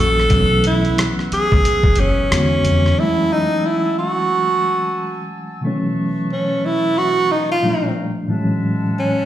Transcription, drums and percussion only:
0.20 cross-stick soft
0.30 kick medium
0.30 closed hi-hat medium
0.64 closed hi-hat medium
0.85 closed hi-hat soft
0.98 cross-stick loud
0.98 closed hi-hat medium
1.19 cross-stick soft
1.32 closed hi-hat medium
1.52 kick loud
1.65 closed hi-hat medium
1.83 kick medium
1.96 closed hi-hat medium
2.32 cross-stick loud
2.32 closed hi-hat medium
2.65 closed hi-hat medium
2.86 cross-stick soft

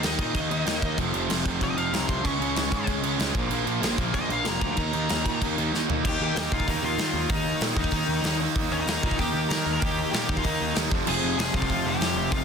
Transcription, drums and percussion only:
0.03 snare loud
0.03 crash medium
0.19 kick medium
0.19 crash medium
0.35 kick medium
0.35 crash medium
0.51 crash medium
0.67 snare loud
0.67 crash medium
0.82 kick medium
0.82 crash medium
0.98 kick medium
0.98 crash medium
1.14 crash medium
1.30 snare loud
1.30 crash medium
1.46 kick medium
1.46 crash medium
1.61 kick medium
1.61 crash medium
1.78 crash medium
1.94 snare loud
1.94 crash medium
2.09 kick loud
2.09 crash medium
2.25 kick medium
2.25 crash medium
2.42 crash medium
2.56 snare loud
2.56 crash medium
2.72 kick medium
2.72 crash medium
2.87 kick medium
2.87 crash medium
3.03 crash medium
3.20 snare loud
3.20 crash medium
3.35 kick loud
3.35 crash medium
3.51 crash medium
3.67 crash medium
3.83 snare loud
3.83 crash medium
3.98 kick loud
3.98 crash medium
4.14 kick medium
4.14 crash medium
4.30 crash medium
4.45 snare loud
4.45 crash medium
4.61 kick medium
4.61 crash medium
4.77 kick medium
4.77 crash medium
4.93 crash medium
5.09 snare loud
5.09 crash medium
5.26 kick medium
5.26 crash medium
5.42 kick medium
5.42 crash medium
5.58 crash medium
5.75 snare medium
5.90 floor tom loud
6.05 kick loud
6.05 crash loud
6.36 snare loud
6.36 open hi-hat medium
6.52 kick loud
6.60 kick medium
6.68 kick medium
6.68 open hi-hat medium
6.98 snare loud
6.98 open hi-hat medium
7.30 kick loud
7.30 open hi-hat medium
7.61 snare loud
7.61 open hi-hat medium
7.76 kick loud
7.84 kick loud
7.91 kick medium
7.91 open hi-hat medium
8.24 snare loud
8.24 open hi-hat medium
8.56 kick loud
8.56 open hi-hat medium
8.88 snare loud
8.88 open hi-hat medium
9.03 kick loud
9.11 kick loud
9.19 kick medium
9.19 open hi-hat medium
9.50 snare loud
9.50 open hi-hat medium
9.82 kick loud
9.82 open hi-hat medium
10.13 snare loud
10.13 open hi-hat medium
10.29 kick loud
10.37 kick medium
10.44 kick loud
10.44 open hi-hat medium
10.75 snare loud
10.75 open hi-hat medium
10.91 kick loud
11.07 crash loud
11.39 snare loud
11.39 open hi-hat medium
11.54 kick loud
11.62 kick loud
11.70 kick medium
11.70 open hi-hat medium
12.01 snare loud
12.01 open hi-hat medium
12.32 kick loud
12.32 open hi-hat medium

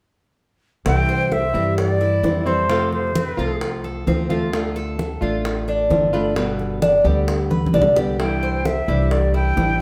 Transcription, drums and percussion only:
0.86 high bongo medium
0.86 high conga soft
1.09 high bongo soft
1.09 high conga soft
1.32 high bongo medium
1.32 high conga soft
1.55 high conga soft
1.78 high bongo medium
1.78 high conga soft
2.01 high bongo soft
2.01 high conga soft
2.23 high bongo soft
2.23 low bongo medium
2.23 high conga medium
2.47 high bongo soft
2.70 high bongo medium
2.70 high conga soft
2.92 high bongo soft
2.92 high conga soft
3.15 high bongo medium
3.15 high conga medium
3.38 high conga soft
3.61 high bongo medium
3.61 high conga soft
3.84 high bongo soft
3.84 high conga soft
4.07 high bongo soft
4.07 low bongo medium
4.07 high conga medium
4.30 high bongo soft
4.30 high conga medium
4.53 high bongo medium
4.53 high conga soft
4.76 high bongo soft
4.76 high conga soft
4.99 high bongo medium
4.99 high conga soft
5.22 high conga soft
5.45 high bongo medium
5.45 high conga soft
5.68 high bongo soft
5.68 high conga soft
5.90 high bongo soft
5.90 low bongo medium
5.90 high conga medium
6.14 high bongo soft
6.36 high bongo medium
6.36 high conga soft
6.59 high bongo soft
6.59 high conga soft
6.82 high bongo medium
6.82 high conga medium
7.05 high conga soft
7.28 high bongo medium
7.28 high conga soft
7.51 high bongo soft
7.51 high conga medium
7.66 high conga medium
7.74 high bongo soft
7.74 low bongo medium
7.82 low conga medium
7.96 high bongo soft
7.96 low conga medium
8.20 high bongo medium
8.20 high conga soft
8.43 high bongo soft
8.43 high conga soft
8.65 high bongo medium
8.65 high conga medium
8.89 high conga soft
9.11 high bongo medium
9.11 high conga soft
9.34 high bongo soft
9.34 high conga soft
9.57 high bongo soft
9.57 low bongo medium
9.57 high conga medium

